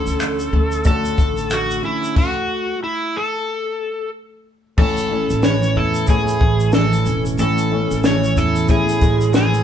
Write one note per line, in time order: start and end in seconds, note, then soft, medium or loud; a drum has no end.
0.00 0.84 D3 medium
0.00 0.78 A3 medium
0.00 1.82 C#4 medium
0.00 0.79 D4 medium
0.00 0.79 F#4 medium
0.00 0.86 A4 loud
0.00 0.79 C#5 medium
0.07 0.49 D2 medium
0.07 shaker medium
0.20 0.53 A3 medium
0.20 finger snap loud
0.20 shaker medium
0.39 shaker soft
0.53 1.14 D2 loud
0.53 1.50 A3 medium
0.72 shaker soft
0.84 2.24 D3 medium
0.84 2.09 A3 medium
0.84 2.09 D4 medium
0.84 2.10 F#4 medium
0.84 1.54 A4 loud
0.84 2.10 C#5 medium
0.84 kick loud
0.84 shaker medium
1.05 shaker medium
1.18 1.80 A1 medium
1.18 kick medium
1.18 shaker soft
1.37 shaker soft
1.51 2.74 A3 medium
1.51 1.83 F#4 medium
1.51 finger snap loud
1.51 shaker medium
1.71 shaker medium
1.83 2.24 C#4 medium
1.83 2.18 E4 medium
2.04 shaker soft
2.16 2.79 F#4 medium
2.16 kick loud
2.16 crash medium
2.84 3.16 E4 medium
3.16 4.09 A4 medium
4.77 5.26 A1 loud
4.77 6.08 A2 medium
4.77 5.08 A3 medium
4.77 5.08 C#4 medium
4.77 5.09 E4 medium
4.77 5.46 A4 medium
4.77 5.09 C#5 medium
4.77 5.09 G#5 medium
4.77 kick loud
4.77 crash medium
4.97 shaker medium
5.09 6.03 A3 medium
5.09 6.03 C#4 medium
5.09 7.06 C#4 medium
5.09 6.03 E4 medium
5.09 6.04 C#5 medium
5.09 6.04 G#5 medium
5.30 5.72 A1 medium
5.30 shaker medium
5.43 6.73 E3 medium
5.43 5.77 C#5 loud
5.43 snare loud
5.43 shaker medium
5.63 shaker soft
5.76 6.37 E2 medium
5.76 8.36 E4 medium
5.76 6.09 A4 medium
5.94 shaker medium
6.07 7.38 A2 medium
6.07 7.32 A3 medium
6.07 7.32 C#4 medium
6.07 7.32 E4 medium
6.07 6.74 G#4 medium
6.07 7.33 C#5 medium
6.07 7.32 G#5 medium
6.07 kick loud
6.07 shaker medium
6.28 shaker medium
6.41 7.02 A1 loud
6.41 kick medium
6.60 shaker soft
6.73 8.03 E3 medium
6.73 7.23 A4 medium
6.73 snare loud
6.73 shaker medium
6.93 shaker soft
7.06 7.36 E1 medium
7.06 7.71 C#4 medium
7.06 shaker medium
7.26 shaker soft
7.38 7.87 A1 loud
7.38 8.68 A2 medium
7.38 7.68 A3 medium
7.38 7.69 C#4 medium
7.38 7.70 E4 medium
7.38 8.07 A4 loud
7.38 7.70 C#5 medium
7.38 7.70 G#5 medium
7.38 shaker medium
7.58 shaker medium
7.70 8.63 A3 medium
7.70 8.64 C#4 medium
7.70 9.63 C#4 medium
7.70 8.64 E4 medium
7.70 8.64 C#5 medium
7.70 8.64 G#5 medium
7.91 8.33 A1 medium
7.91 shaker medium
8.04 9.33 E3 medium
8.04 8.38 C#5 loud
8.04 snare loud
8.04 shaker medium
8.24 shaker soft
8.36 8.98 E2 medium
8.36 9.63 E4 medium
8.36 8.70 A4 medium
8.36 shaker soft
8.56 shaker soft
8.68 9.63 A2 medium
8.68 9.63 A3 medium
8.68 9.63 C#4 medium
8.68 9.63 E4 medium
8.68 9.63 G#4 medium
8.68 9.35 G#4 medium
8.68 9.63 E5 medium
8.68 kick medium
8.68 shaker medium
8.89 shaker medium
9.01 9.63 A1 loud
9.01 9.63 G#3 medium
9.01 kick medium
9.01 shaker medium
9.21 shaker soft
9.34 9.63 E3 medium
9.34 9.63 G#4 medium
9.34 snare loud
9.34 shaker medium
9.54 shaker medium